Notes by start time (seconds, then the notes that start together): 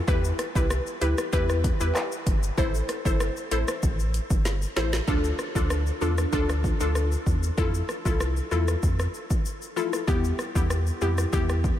0.07 E2 E4 G4 B4, kick, shaker
0.24 shaker
0.39 cross-stick, closed hi-hat, shaker
0.55 C2 E4 G4 B4, kick, shaker
0.70 cross-stick, shaker
0.87 shaker
1.01 D2 E4 G4 B4, closed hi-hat, shaker
1.18 cross-stick, shaker
1.33 E2 E4 G4 B4, kick, shaker
1.49 cross-stick, shaker
1.64 kick, closed hi-hat, shaker
1.80 E2 E4 G4 B4, shaker
1.95 cross-stick, clap, shaker
2.12 shaker
2.27 G1, kick, closed hi-hat, shaker
2.43 shaker
2.57 A1 E4 A4 C5, kick, shaker
2.74 shaker
2.89 cross-stick, closed hi-hat, shaker
3.05 G1 E4 A4 C5, kick, shaker
3.20 cross-stick, shaker
3.37 shaker
3.51 A1 E4 A4 C5, closed hi-hat, shaker
3.68 cross-stick, shaker
3.83 A1, kick, shaker
3.99 shaker
4.14 closed hi-hat, shaker
4.30 G1, kick, shaker
4.45 snare, shaker
4.62 shaker
4.76 A1 E4 A4 C5, snare, closed hi-hat, shaker
4.93 snare, shaker
5.08 D2 D4 F4 A4, kick, shaker
5.24 shaker
5.39 cross-stick, shaker
5.55 D2 D4 F4 A4, kick, shaker
5.70 cross-stick, shaker
5.87 shaker
6.01 E2 D4 F4 A4, shaker
6.18 cross-stick, shaker
6.33 D2 D4 F4 A4, kick, shaker
6.49 cross-stick, shaker
6.64 kick, shaker
6.80 D2 D4 F4 A4, shaker
6.95 cross-stick, shaker
7.12 shaker
7.27 E2, kick, shaker
7.43 shaker
7.58 F2 E4 F4 A4, kick, shaker
7.74 shaker
7.89 cross-stick, shaker
8.05 C2 E4 F4 A4, kick, shaker
8.20 cross-stick, shaker
8.37 shaker
8.51 E2 E4 F4 A4, shaker
8.68 cross-stick, shaker
8.83 F2, kick, shaker
8.99 cross-stick, shaker
9.14 shaker
9.30 kick, shaker
9.46 shaker
9.62 shaker
9.76 E4 F4 A4, shaker
9.93 cross-stick, shaker
10.07 E2 B3 E4 G4, kick, shaker
10.24 shaker
10.39 cross-stick, shaker
10.55 E2 B3 E4 G4, kick, shaker
10.70 cross-stick, shaker
10.87 shaker
11.01 F2 B3 E4 G4, shaker
11.18 cross-stick, shaker
11.33 E2 B3 E4 G4, kick, shaker
11.49 cross-stick, shaker
11.64 kick, shaker